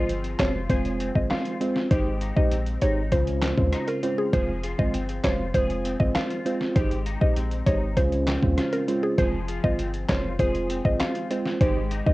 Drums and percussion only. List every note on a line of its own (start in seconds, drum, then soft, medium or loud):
0.09 closed hi-hat medium
0.24 closed hi-hat medium
0.39 kick medium
0.39 snare loud
0.39 clap loud
0.39 closed hi-hat medium
0.70 kick loud
0.70 closed hi-hat medium
0.85 closed hi-hat soft
1.00 closed hi-hat medium
1.15 kick loud
1.30 cross-stick loud
1.30 snare loud
1.30 clap medium
1.30 closed hi-hat medium
1.45 closed hi-hat soft
1.61 closed hi-hat medium
1.76 snare medium
1.91 kick loud
1.91 closed hi-hat medium
2.21 closed hi-hat medium
2.37 kick medium
2.51 closed hi-hat medium
2.66 closed hi-hat medium
2.81 closed hi-hat medium
3.12 kick loud
3.12 closed hi-hat medium
3.27 closed hi-hat soft
3.42 snare loud
3.42 clap loud
3.42 closed hi-hat medium
3.58 kick loud
3.73 cross-stick loud
3.73 closed hi-hat medium
3.88 closed hi-hat medium
4.03 closed hi-hat medium
4.33 kick loud
4.33 closed hi-hat medium
4.64 closed hi-hat medium
4.79 kick medium
4.94 closed hi-hat medium
5.09 closed hi-hat medium
5.24 kick medium
5.24 snare loud
5.24 clap loud
5.24 closed hi-hat medium
5.54 kick loud
5.54 closed hi-hat medium
5.70 closed hi-hat soft
5.85 closed hi-hat medium
6.00 kick loud
6.15 cross-stick loud
6.15 snare loud
6.15 clap medium
6.15 closed hi-hat medium
6.30 closed hi-hat soft
6.46 closed hi-hat medium
6.61 snare medium
6.76 kick loud
6.76 closed hi-hat medium
6.91 closed hi-hat medium
7.06 closed hi-hat medium
7.22 kick medium
7.36 closed hi-hat medium
7.51 closed hi-hat medium
7.67 kick medium
7.67 closed hi-hat medium
7.97 kick loud
7.97 closed hi-hat medium
8.12 closed hi-hat soft
8.27 snare loud
8.27 clap loud
8.27 closed hi-hat medium
8.43 kick loud
8.58 cross-stick loud
8.58 snare medium
8.58 closed hi-hat medium
8.73 closed hi-hat medium
8.88 closed hi-hat medium
9.18 kick loud
9.18 closed hi-hat medium
9.48 closed hi-hat medium
9.64 kick medium
9.79 closed hi-hat medium
9.94 closed hi-hat medium
10.09 kick medium
10.09 snare loud
10.09 clap medium
10.09 closed hi-hat medium
10.39 kick loud
10.39 closed hi-hat medium
10.55 closed hi-hat soft
10.70 closed hi-hat medium
10.85 kick loud
11.00 cross-stick loud
11.00 snare loud
11.00 clap medium
11.00 closed hi-hat medium
11.15 closed hi-hat soft
11.31 closed hi-hat medium
11.45 snare medium
11.61 kick loud
11.61 closed hi-hat medium
11.91 closed hi-hat medium
12.06 kick medium